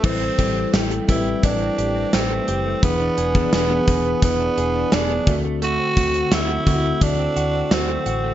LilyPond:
<<
  \new Staff \with { instrumentName = "Tenor saxophone" } { \time 4/4 \key a \dorian \tempo 4 = 86 c'4 r8 e'8 d'4 c'4 | b4 b4 b4 d'8 r8 | fis'4 e'4 d'4 c'4 | }
  \new Staff \with { instrumentName = "Clean electric guitar" } { \time 4/4 \key a \dorian e16 c'16 g'16 c'16 g'16 a16 g'16 a16 e16 c'16 g'16 c'16 g'16 a16 g'16 a16 | e16 d'16 gis'16 d'16 gis'16 b16 gis'16 b16 e16 d'16 gis'16 d'16 gis'16 b16 a16 a16 | a16 c'16 fis'16 c'16 fis'16 a16 fis'16 a16 a16 c'16 fis'16 c'16 fis'16 a16 fis'16 a16 | }
  \new Staff \with { instrumentName = "Tine electric piano" } { \time 4/4 \key a \dorian <g c' e' a'>16 r16 <g c' e' a'>8. r16 <g c' e' b'>4. r4 | <e b d' gis'>8 r16 <e b d' gis'>16 r16 <e b d' gis'>4. r8. <d a c' fis'>8~ | <d a c' fis'>16 r16 <d a c' fis'>8. r16 <d a c' e' fis'>4. r4 | }
  \new Staff \with { instrumentName = "Fingered electric bass" } { \clef bass \time 4/4 \key a \dorian a,,8 a,,8 a,,8 a,,8 a,,8 a,,8 a,,8 fis,,8 | e,,8 e,,8 e,,8 e,,8 e,,8 e,,8 e,,8 d,8~ | d,8 d,8 d,8 d,8 d,8 d,8 d,8 a,,8 | }
  \new DrumStaff \with { instrumentName = "Drums" } \drummode { \time 4/4 <cymc bd>8 <hh bd>8 <hh sn>16 hh16 <hh bd>8 <hh bd>8 hh8 <hh sn>8 hh8 | <hh bd>8 hh16 bd16 <hh sn>8 <hh bd>8 <hh bd>8 hh8 <hh sn>8 <hh bd>8 | hh8 <hh bd>16 hh16 <hh sn>8 <hh bd>8 <hh bd>8 hh8 <hh sn>8 hh8 | }
>>